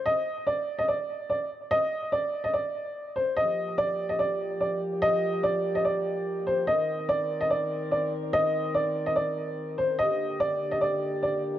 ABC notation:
X:1
M:4/4
L:1/16
Q:1/4=145
K:Gm
V:1 name="Upright piano"
e4 d3 e d4 d2 z2 | e4 d3 e d6 c2 | e4 d3 e d4 d2 z2 | e4 d3 e d6 c2 |
e4 d3 e d4 d2 z2 | e4 d3 e d6 c2 | e4 d3 e d4 d2 z2 |]
V:2 name="Brass ensemble"
z16 | z16 | [F,B,G]16- | [F,B,G]16 |
[E,CB]16- | [E,CB]16 | [D,B,G]16 |]